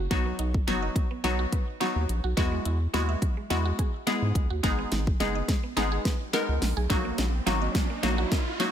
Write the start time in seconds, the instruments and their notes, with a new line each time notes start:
0.11 analog synth bass B1, synth stab F#3 B3 D#4 F#4, synth arpeggio sound F#3, kick, snare, closed hi-hat
0.26 synth arpeggio sound B3
0.39 analog synth bass B1, synth arpeggio sound D#4, closed hi-hat
0.54 kick
0.67 analog synth bass F#1, synth stab F#3 B3 D#4 F#4, snare, closed hi-hat
0.82 synth arpeggio sound D#5
0.96 synth arpeggio sound F#3, kick, closed hi-hat
1.11 synth arpeggio sound B3
1.24 analog synth bass B1, synth stab F#3 B3 D#4 F#4, synth arpeggio sound D#4, snare, closed hi-hat
1.39 synth arpeggio sound F#4
1.52 synth arpeggio sound B4, kick, closed hi-hat
1.80 synth stab F#3 B3 D#4 F#4, snare, closed hi-hat
1.96 analog synth bass D#2
2.09 analog synth bass A#1, closed hi-hat
2.24 analog synth bass B1, synth arpeggio sound F#4
2.37 analog synth bass E2, synth arpeggio sound F#3, synth stab G#3 B3 E4 F#4, kick, snare, closed hi-hat
2.52 synth arpeggio sound G#3
2.65 analog synth bass E2, synth arpeggio sound E4, closed hi-hat
2.93 analog synth bass D#2, synth stab G#3 B3 E4 F#4, snare, closed hi-hat
3.09 synth arpeggio sound E5
3.22 synth arpeggio sound F#3, kick, closed hi-hat
3.37 synth arpeggio sound G#3
3.50 analog synth bass E2, synth stab G#3 B3 E4 F#4, synth arpeggio sound E4, snare, closed hi-hat
3.65 synth arpeggio sound F#4
3.79 synth arpeggio sound G#4, kick, closed hi-hat
4.07 synth stab G#3 B3 E4 G#4, snare, closed hi-hat
4.22 analog synth bass G#2
4.35 analog synth bass C#2, kick, closed hi-hat
4.50 analog synth bass D#2, synth arpeggio sound F#4
4.63 analog synth bass G#1, synth stab G#3 B3 D#4 G#4, synth arpeggio sound G#3, kick, snare, closed hi-hat, riser
4.79 synth arpeggio sound B3
4.92 analog synth bass G#1, synth arpeggio sound D#4, snare, closed hi-hat
5.07 kick
5.20 analog synth bass F#1, synth stab G#3 B3 D#4 G#4, snare, closed hi-hat
5.35 synth arpeggio sound D#5
5.48 synth arpeggio sound G#3, kick, snare, closed hi-hat
5.63 synth arpeggio sound B3
5.76 analog synth bass G#1, synth stab G#3 B3 D#4 G#4, synth arpeggio sound D#4, snare, closed hi-hat
5.92 synth arpeggio sound G#4
6.05 synth arpeggio sound B4, kick, snare, closed hi-hat
6.33 synth stab G#3 B3 D#4 A#4, snare, closed hi-hat
6.49 analog synth bass C#2
6.62 analog synth bass A#1, snare, open hi-hat
6.77 analog synth bass B1, synth arpeggio sound G#4
6.90 analog synth bass A#1, synth stab F#3 A#3 D#4 F#4, synth arpeggio sound F#3, kick, snare, closed hi-hat
7.05 synth arpeggio sound A#3
7.18 analog synth bass A#1, synth arpeggio sound D#4, snare, closed hi-hat
7.46 analog synth bass G#1, synth stab F#3 A#3 D#4 F#4, snare, closed hi-hat
7.62 synth arpeggio sound D#5
7.75 synth arpeggio sound F#3, kick, snare, closed hi-hat
7.90 synth arpeggio sound A#3
8.03 analog synth bass A#1, synth stab F#3 A#3 D#4 F#4, synth arpeggio sound D#4, snare, closed hi-hat
8.18 synth arpeggio sound F#4
8.31 synth arpeggio sound A#4, kick, snare, closed hi-hat
8.60 synth stab F#3 A#3 D#4 F#4, snare, closed hi-hat